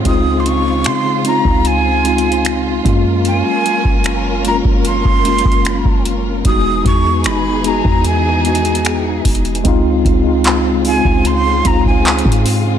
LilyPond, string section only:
\new Staff \with { instrumentName = "String section" } { \time 4/4 \key des \major \tempo 4 = 75 <des aes c' f'>2.~ <des aes c' f'>8 <ges des' bes'>8~ | <ges des' bes'>1 | <e b dis' gis'>1 | <des aes c' f'>1 | }